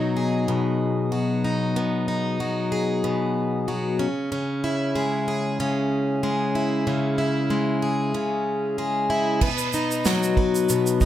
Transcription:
0.00 0.47 B2 medium
0.00 1.11 F#3 medium
0.00 1.43 D#4 medium
0.17 2.72 G#4 medium
0.48 1.75 B2 medium
1.12 2.39 F#3 medium
1.45 2.07 D#4 soft
1.76 3.03 B2 medium
2.08 4.06 D#4 medium
2.40 3.67 F#3 medium
2.72 5.27 G#4 medium
3.04 4.06 B2 medium
3.68 4.07 F#3 medium
3.99 4.31 C#3 medium
4.32 5.59 C#3 medium
4.64 6.54 E4 medium
4.96 6.22 G#3 medium
5.28 7.81 G#4 medium
5.60 6.86 C#3 medium
6.23 7.49 G#3 medium
6.55 7.17 E4 medium
6.87 8.13 C#3 medium
7.18 9.09 E4 medium
7.50 8.77 G#3 medium
7.82 9.42 G#4 medium
8.14 9.49 C#3 medium
8.78 9.49 G#3 medium
9.10 9.49 E4 medium
9.41 10.69 B2 medium
9.41 11.05 B4 medium
9.41 kick loud
9.41 crash medium
9.58 shaker medium
9.73 11.01 D#4 medium
9.73 shaker soft
9.91 shaker soft
10.05 11.05 F#3 medium
10.05 snare loud
10.05 shaker medium
10.23 shaker soft
10.37 11.05 B3 medium
10.37 kick medium
10.55 shaker medium
10.69 11.05 B2 medium
10.69 shaker medium
10.87 shaker soft
11.01 11.05 D#4 medium
11.01 kick medium
11.01 shaker soft

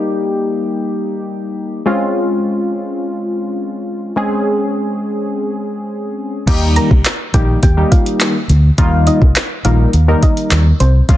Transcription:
0.00 1.82 G3 medium
0.00 1.82 A#3 medium
0.00 1.82 D#4 medium
0.00 1.82 G4 medium
1.86 4.12 G#3 medium
1.86 4.13 C4 medium
1.86 4.13 C#4 medium
1.86 4.13 F4 medium
4.16 6.43 G#3 medium
4.16 6.43 C4 medium
4.16 6.43 C#4 medium
4.16 6.44 G#4 medium
6.47 6.77 D#2 loud
6.47 6.97 D#3 medium
6.47 6.97 G3 medium
6.47 6.98 A#3 medium
6.47 6.98 D#4 medium
6.47 6.98 G4 loud
6.47 kick loud
6.47 closed hi-hat loud
6.47 crash loud
6.76 6.89 A#4 medium
6.76 6.89 A#5 medium
6.76 closed hi-hat medium
6.91 7.01 C2 loud
6.91 kick medium
7.05 snare loud
7.05 clap loud
7.05 closed hi-hat loud
7.34 7.53 A#1 loud
7.34 7.59 D#3 medium
7.34 7.59 G3 medium
7.34 7.59 A#3 medium
7.34 7.59 D#4 medium
7.34 7.59 G4 medium
7.34 7.47 G4 medium
7.34 7.46 G5 medium
7.34 kick loud
7.34 closed hi-hat medium
7.63 7.82 D#2 loud
7.63 7.88 G4 medium
7.63 7.88 G5 medium
7.63 kick loud
7.63 closed hi-hat medium
7.77 8.36 D#3 medium
7.77 8.36 G3 medium
7.77 8.36 A#3 medium
7.77 8.36 D#4 medium
7.77 8.36 G4 medium
7.91 8.05 F4 medium
7.91 8.04 F5 medium
7.91 kick loud
7.91 closed hi-hat medium
8.06 closed hi-hat medium
8.20 snare loud
8.20 clap loud
8.20 closed hi-hat loud
8.49 8.69 D2 medium
8.49 closed hi-hat medium
8.78 9.07 D#2 loud
8.78 9.28 D#3 medium
8.78 9.28 G3 medium
8.78 9.28 A#3 medium
8.78 9.28 D#4 medium
8.78 9.29 F4 loud
8.78 kick loud
8.78 closed hi-hat loud
9.07 9.20 D#4 medium
9.07 9.20 D#5 medium
9.07 closed hi-hat medium
9.22 9.31 C2 loud
9.22 kick medium
9.36 snare loud
9.36 clap loud
9.36 closed hi-hat loud
9.65 9.84 A#1 medium
9.65 9.90 D#3 medium
9.65 9.90 G3 medium
9.65 9.90 A#3 medium
9.65 9.90 D#4 medium
9.65 9.78 F4 medium
9.65 9.90 A#4 medium
9.65 9.77 F5 medium
9.65 closed hi-hat medium
9.93 10.13 D#2 loud
9.93 closed hi-hat medium
10.08 10.66 D#3 medium
10.08 10.67 G3 medium
10.08 10.67 A#3 medium
10.08 10.67 D#4 medium
10.08 10.67 A#4 medium
10.23 10.48 D#4 medium
10.23 10.48 D#5 medium
10.23 kick loud
10.23 closed hi-hat medium
10.37 closed hi-hat medium
10.51 10.71 D#2 loud
10.51 snare loud
10.51 clap loud
10.51 closed hi-hat loud
10.80 11.00 C2 loud
10.80 10.93 C4 medium
10.80 10.93 C5 loud
10.80 closed hi-hat medium
11.09 11.17 C#2 loud
11.09 11.17 F3 medium
11.09 11.17 G#3 medium
11.09 11.17 C4 medium
11.09 11.17 C#4 medium
11.09 11.17 F4 loud
11.09 kick loud
11.09 closed hi-hat loud

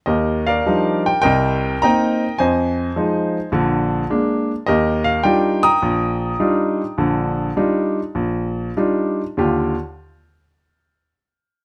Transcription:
0.06 0.58 D#2 medium
0.06 1.21 G4 soft
0.06 0.46 A#4 soft
0.06 0.48 D#5 medium
0.47 1.21 A#4 soft
0.47 1.21 D5 soft
0.47 1.02 F5 medium
0.66 1.08 F3 soft
0.66 1.08 G3 soft
0.66 1.08 D4 soft
0.66 1.08 D#4 soft
1.06 1.20 G5 medium
1.22 1.75 C2 medium
1.22 1.75 C3 medium
1.22 2.34 A#4 medium
1.22 1.82 D#5 medium
1.22 1.82 G5 medium
1.82 2.23 A#3 soft
1.82 2.23 C4 soft
1.82 2.23 D#4 medium
1.82 2.36 D#5 medium
1.82 2.36 G5 medium
1.82 2.41 A#5 medium
2.38 2.89 F2 medium
2.38 3.49 C5 medium
2.38 3.49 D#5 soft
2.38 3.48 G#5 medium
2.96 3.36 F3 soft
2.96 3.37 G#3 soft
2.96 3.37 D#4 medium
3.52 4.02 A#1 medium
3.52 4.02 D3 medium
4.10 4.50 G#3 soft
4.10 4.51 A#3 soft
4.10 4.51 D4 medium
4.66 5.18 D#2 medium
4.66 5.77 G4 medium
4.66 5.77 A#4 medium
4.66 5.07 D#5 medium
5.04 5.24 F5 medium
5.23 5.65 G3 medium
5.23 5.65 D4 soft
5.23 5.65 D#4 soft
5.23 5.65 F4 medium
5.23 5.63 G5 medium
5.63 8.73 G5 medium
5.63 8.73 A#5 medium
5.63 8.73 D#6 loud
5.82 6.32 A#1 medium
6.40 6.81 G3 soft
6.40 6.81 D4 soft
6.40 6.81 D#4 soft
6.40 6.81 F4 soft
6.98 7.49 A#1 medium
6.98 7.49 D3 medium
7.57 7.98 G3 soft
7.57 7.99 D4 soft
7.57 7.99 D#4 soft
7.57 7.99 F4 soft
8.15 8.68 A#1 medium
8.77 9.20 G3 soft
8.77 9.21 D4 soft
8.77 9.21 D#4 soft
8.77 9.21 F4 soft
9.37 9.74 D#2 soft
9.37 9.74 D3 soft
9.37 9.74 F4 soft
9.37 9.75 G4 medium

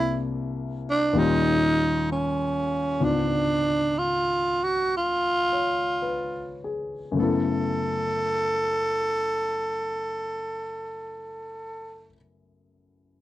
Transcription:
0.00 1.15 C2 soft
0.00 1.15 C3 soft
0.00 1.15 A#3 soft
0.00 1.15 D4 soft
0.00 0.26 E4 loud
0.00 1.16 E4 medium
0.90 1.20 D4 medium
1.13 2.98 D#2 medium
1.13 2.99 A#2 medium
1.13 3.00 G3 soft
1.13 3.00 C#4 soft
1.18 2.07 D#4 medium
1.18 3.00 F4 medium
2.12 3.06 C#4 medium
3.00 7.18 C#2 soft
3.00 7.18 G#2 soft
3.00 7.17 B3 soft
3.00 7.19 D4 soft
3.00 4.00 D4 medium
3.00 7.19 F4 soft
3.99 4.66 F4 medium
4.64 4.96 F#4 medium
4.97 6.76 F4 medium
5.52 6.29 C#5 soft
6.02 6.95 B4 soft
6.64 7.47 G#4 soft
7.12 12.06 F#2 soft
7.12 12.08 C#3 soft
7.16 12.11 A3 soft
7.16 12.13 B3 soft
7.16 12.10 A4 medium
7.21 12.15 E4 soft
7.21 12.18 A4 medium

